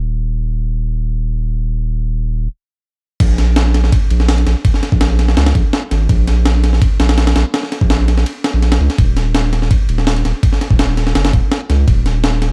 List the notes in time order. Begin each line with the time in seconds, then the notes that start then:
Already playing: D#1
3.20 A#1, kick, crash, ride
3.38 snare, ride
3.56 snare, ride
3.74 snare, ride
3.84 snare
3.92 kick, ride
4.11 A#1, ride
4.20 snare
4.29 snare, open hi-hat
4.38 ride
4.47 A#1, snare, ride
4.65 kick, ride
4.74 snare
4.83 snare, ride
4.92 A#1, kick
5.01 snare, ride
5.19 snare, ride
5.28 snare
5.37 C#2, snare, ride
5.46 snare, ride
5.55 A#1, kick, ride
5.73 snare, ride
5.91 G#1, snare, ride
6.09 A#1, kick, ride
6.27 snare, ride
6.45 snare, ride
6.64 snare, ride
6.73 snare
6.82 kick, ride
7.00 A#1, snare, ride
7.09 snare, ride
7.18 snare, ride
7.27 snare, ride
7.36 A#1, snare, ride
7.54 snare, ride
7.63 snare
7.72 snare, ride
7.81 A#1, kick
7.90 snare, ride
8.08 snare, ride
8.18 snare
8.26 ride
8.44 snare, ride
8.54 A#1
8.62 snare, ride
8.72 snare, ride
8.80 C#2
8.90 snare, ride
8.98 D#1, kick, ride
9.17 snare, ride
9.35 snare, ride
9.53 snare, ride
9.62 snare
9.71 kick, ride
9.89 D#1, ride
9.98 snare
10.07 snare, open hi-hat
10.16 ride
10.25 D#1, snare, ride
10.43 kick, ride
10.53 snare
10.61 snare, ride
10.71 D#1, kick
10.79 snare, ride
10.97 snare, ride
11.07 snare
11.15 F#1, snare, ride
11.25 snare, ride
11.33 D#1, kick, ride
11.52 snare, ride
11.70 C#2, snare, ride
11.88 D#1, kick, ride
12.06 snare, ride
12.24 snare, ride
12.42 snare, ride